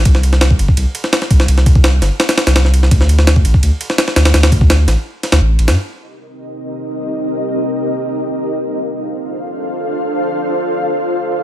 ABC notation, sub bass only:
X:1
M:4/4
L:1/16
Q:1/4=168
K:Cdor
V:1 name="Sub bass" clef=bass
C,,6 G,,, z C,, z4 z C,,2 | C,,6 G,,, z4 C,,4- C,, | D,,6 A,,, z D,, z4 z D,,2 | D,,6 A,,, z4 D,, A,,,2 A,,, G,, |
z16 | z16 | z16 | z16 |]